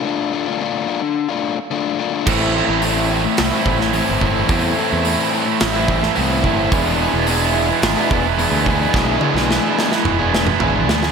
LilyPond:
<<
  \new Staff \with { instrumentName = "Overdriven electric guitar" } { \time 4/4 \key a \minor \tempo 4 = 108 <d a d' f'>8 <d a d' f'>16 <a d' f'>16 <d a d' f'>8 <d a d' f'>8. <a d' f'>8. <d a d' f'>8 <d a d' f'>16 <a d' f'>16 | <a, e a c' e'>8 <e a c' e'>16 <a c' e'>16 <a, e a c' e'>8 <e a c' e'>8. <a c' e'>8. <a, e a c' e'>8 <e a c' e'>16 <a c' e'>16 | <a, e a c' e'>8 <e a c' e'>16 <a c' e'>16 <a, e a c' e'>8 <e a c' e'>8. <a c' e'>8. <a, e a c' e'>8 <e a c' e'>16 <a c' e'>16 | <e b d' gis'>8 <e b d' gis'>16 <b d' gis'>16 <e b d' gis'>8 <e b d' gis'>8. <b d' gis'>8. <e b d' gis'>8 <e b d' gis'>16 <b d' gis'>16 |
<e b d' gis'>8 <e b d' gis'>16 <b d' gis'>16 <e b d' gis'>8 <e b d' gis'>8. <b d' gis'>8. <e b d' gis'>8 <e b d' gis'>16 <b d' gis'>16 | }
  \new Staff \with { instrumentName = "Distorted electric guitar" } { \time 4/4 \key a \minor r1 | <a, e a c' e'>8 <e a c' e'>16 <a c' e'>16 <a, e a c' e'>16 <a c' e'>8 <a c' e'>8 <a c' e'>16 <e a c' e'>16 <a c' e'>16 <a, e a c' e'>8 <e a c' e'>16 <a c' e'>16 | <a, e a c' e'>8 <e a c' e'>16 <a c' e'>16 <a, e a c' e'>16 <a c' e'>8 <a c' e'>8 <a c' e'>16 <e a c' e'>16 <a c' e'>16 <a, e a c' e'>8 <e a c' e'>16 <a c' e'>16 | <e gis b e'>8 <e gis b e'>16 <gis b e'>16 <e gis b e'>16 <gis b e'>8 <gis b e'>8 <gis b e'>16 <e gis b e'>16 <gis b e'>16 <e gis b e'>8 <e gis b e'>16 <gis b e'>16 |
<e gis b e'>8 <e gis b e'>16 <gis b e'>16 <e gis b e'>16 <gis b e'>8 <gis b e'>8 <gis b e'>16 <e gis b e'>16 <gis b e'>16 <e gis b e'>8 <e gis b e'>16 <gis b e'>16 | }
  \new Staff \with { instrumentName = "Distorted electric guitar" } { \clef bass \time 4/4 \key a \minor r1 | <a, e a>1 | <a, e a>1 | <e, b, e>1 |
<e, b, e>1 | }
  \new Staff \with { instrumentName = "Picked electric bass" } { \clef bass \time 4/4 \key a \minor r1 | a,,8. a,,4~ a,,16 c,16 r16 a,,8. g,,8. | e,8 r16 e,8 r8. a,,4 c,8 g,,8 | e,,8. e,,4~ e,,16 gis,,16 r16 e,,8. d,8. |
b,,8 r16 b,,8 r8. e,,4 gis,,8 d,8 | }
  \new DrumStaff \with { instrumentName = "Drums" } \drummode { \time 4/4 r4 r4 r4 r4 | <cymc bd>4 hho4 <hho sn>8 bd16 sn16 hho8 bd8 | <hho bd>4 hho4 <hho sn>8 bd16 sn16 hho8 bd8 | <hho bd>4 hho4 <hho sn>8 bd8 hho8 bd8 |
<bd sn>8 tommh16 sn16 sn8 sn16 sn16 toml8 sn16 toml16 tomfh8 sn16 sn16 | }
>>